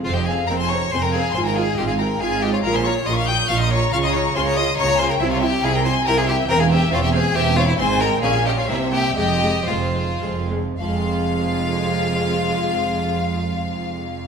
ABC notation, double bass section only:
X:1
M:3/4
L:1/8
Q:1/4=138
K:Fm
V:1 name="Double bass section" clef=bass
F,,,2 F,,,2 F,,,2 | A,,,2 A,,,2 A,,,2 | B,,,2 B,,,2 B,,,2 | D,,2 D,,2 D,,2 |
C,,2 C,,2 C,,2 | =E,,,2 E,,,2 E,,,2 | A,,,2 B,,,2 C,,2 | F,,,2 F,,,2 F,,,2 |
F,,,6- | F,,,6 |]